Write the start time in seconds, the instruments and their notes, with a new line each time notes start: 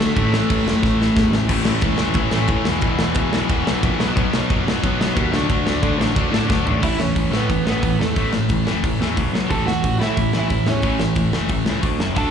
Already playing: picked electric bass D2, distorted electric guitar D3 A3 D4 F#4
0.00 overdriven electric guitar A3 A4, snare
0.15 picked electric bass A1, distorted electric guitar A2 E3 A3 C#4 E4, kick, crash
0.32 picked electric bass A1, snare
0.50 picked electric bass A1, kick, crash
0.65 picked electric bass F#1, snare
0.82 picked electric bass A1, kick, snare
1.02 snare
1.16 picked electric bass E2, kick, snare
1.31 picked electric bass A1, snare
1.48 picked electric bass A1, distorted electric guitar A2 E3 A3 C#4 E4, kick, crash
1.64 picked electric bass A1, distorted electric guitar A2 E3 A3 C#4 E4, snare
1.81 picked electric bass E1, distorted electric guitar A2 E3 A3 C#4 E4, kick, ride
1.98 picked electric bass E1, distorted electric guitar A2 E3 A3 C#4 E4, snare
2.14 picked electric bass A1, distorted electric guitar A2 E3 A3 C#4 E4, kick, ride
2.31 picked electric bass A1, distorted electric guitar A2 E3 A3 C#4 E4, snare
2.48 picked electric bass A2, distorted electric guitar A2 E3 A3 C#4 E4, kick, ride
2.65 picked electric bass E1, distorted electric guitar E2 B2 E3 G#3 B3 E4, snare
2.81 picked electric bass E1, distorted electric guitar B2 E3 G#3 B3 E4, kick, ride
2.86 distorted electric guitar E2
2.99 picked electric bass E1, distorted electric guitar E2 B2 E3 G#3 B3 E4, snare
3.14 picked electric bass E2, distorted electric guitar E3 G#3 B3 E4, kick, ride
3.19 distorted electric guitar E2 B2
3.32 picked electric bass B1, distorted electric guitar E2 B2 E3 G#3 B3 E4, snare
3.49 picked electric bass E1, distorted electric guitar E2 B2 E3 G#3 B3 E4, kick, ride
3.66 picked electric bass B1, distorted electric guitar E2 B2 E3 G#3 B3 E4, snare
3.83 picked electric bass A#1, distorted electric guitar E2 B2 E3 G#3 B3 E4, kick, ride
4.00 picked electric bass B1, distorted electric guitar B2 F#3 B3 D#4, snare
4.16 picked electric bass B1, distorted electric guitar B2 F#3 B3 D#4, kick, ride
4.33 picked electric bass B1, distorted electric guitar B2 F#3 B3 D#4, snare
4.49 picked electric bass F#1, distorted electric guitar B2 F#3 B3 D#4, kick, ride
4.66 picked electric bass F#1, distorted electric guitar B2 F#3 B3 D#4, snare
4.83 picked electric bass B1, distorted electric guitar B2 F#3 B3 D#4, kick, ride
4.99 picked electric bass B1, distorted electric guitar B2 F#3 B3 D#4, snare
5.15 picked electric bass D#2, distorted electric guitar B2 F#3 B3 D#4, kick, ride
5.30 picked electric bass D2, distorted electric guitar D3
5.34 distorted electric guitar D3 F#3 A3 D4, snare
5.49 picked electric bass D2, distorted electric guitar D3 F#3 A3 D4, kick, ride
5.65 picked electric bass D2, distorted electric guitar D3 F#3 A3 D4, snare
5.83 picked electric bass D3, distorted electric guitar D3 F#3 A3 D4, kick, ride
5.97 picked electric bass A1, distorted electric guitar D3 F#3 A3
6.01 distorted electric guitar D4, snare
6.16 picked electric bass D2, distorted electric guitar D3 F#3 A3 D4, kick, ride
6.32 picked electric bass A2, distorted electric guitar D3 F#3 A3 D4, snare
6.49 picked electric bass D2, distorted electric guitar D3 F#3 A3 D4, kick, snare
6.65 picked electric bass A1, distorted electric guitar D3 F#3 A3 D4, floor tom
6.83 picked electric bass A1, distorted electric guitar A2 E3 A3, overdriven electric guitar E4 E5, kick, crash
6.99 picked electric bass E1, distorted electric guitar A2 E3, overdriven electric guitar C#4 C#5, snare
7.15 picked electric bass A1, distorted electric guitar A2 E3, kick, open hi-hat
7.31 picked electric bass A2, distorted electric guitar A2 E3 A3, snare
7.36 overdriven electric guitar B3 B4
7.49 picked electric bass A1, distorted electric guitar A2 E3, kick, open hi-hat
7.64 picked electric bass A1, distorted electric guitar A2 E3 A3, overdriven electric guitar B3, snare
7.70 overdriven electric guitar B4
7.82 picked electric bass A1, distorted electric guitar A2 E3 A3, kick, open hi-hat
7.99 picked electric bass E2, distorted electric guitar A2 E3, overdriven electric guitar A3 A4, snare
8.16 picked electric bass A1, distorted electric guitar A2 E3 A3, kick, open hi-hat
8.32 picked electric bass A1, distorted electric guitar A2 E3, snare
8.49 picked electric bass A1, distorted electric guitar A2 E3, kick, open hi-hat
8.64 picked electric bass F#1, distorted electric guitar A2 E3 A3, snare
8.68 distorted electric guitar A3
8.83 picked electric bass A1, distorted electric guitar A2 E3, kick, open hi-hat
9.00 picked electric bass E2, distorted electric guitar A2 E3 A3, snare
9.17 picked electric bass B1, distorted electric guitar B2 F#3 B3, kick, open hi-hat
9.32 picked electric bass B1, distorted electric guitar B2 F#3 B3, snare
9.50 picked electric bass A1, distorted electric guitar A2 E3 A3, overdriven electric guitar A4 A5, kick, open hi-hat
9.66 picked electric bass E1, distorted electric guitar A2 E3, overdriven electric guitar F#4 F#5, snare
9.84 picked electric bass A1, distorted electric guitar A2 E3, kick, open hi-hat
10.00 picked electric bass A2, distorted electric guitar A2 E3 A3, overdriven electric guitar E4 E5, snare
10.15 picked electric bass A1, distorted electric guitar A2 E3, kick, open hi-hat
10.33 picked electric bass A1, distorted electric guitar A2 E3 A3, overdriven electric guitar E4, snare
10.39 overdriven electric guitar E5
10.50 picked electric bass A1, distorted electric guitar A2 E3 A3, kick, open hi-hat
10.66 picked electric bass E2, distorted electric guitar A2 E3, overdriven electric guitar C#4 C#5, snare
10.82 picked electric bass A1, distorted electric guitar A2 E3 A3, kick, open hi-hat
10.99 picked electric bass A1, distorted electric guitar A2 E3, snare
11.15 picked electric bass A1, distorted electric guitar A2 E3, kick, open hi-hat
11.32 picked electric bass F#1, distorted electric guitar A2 E3 A3, snare
11.49 picked electric bass A1, distorted electric guitar A2 E3, kick, open hi-hat
11.66 picked electric bass C#2, distorted electric guitar A2 E3 A3, snare
11.81 picked electric bass D2, distorted electric guitar D3 A3 D4, kick, open hi-hat
11.98 picked electric bass F#1, distorted electric guitar F#2 C#3 F#3 C#4 F#4, snare
12.15 picked electric bass D2, distorted electric guitar D3 A3 D4, overdriven electric guitar A4 A5, kick, open hi-hat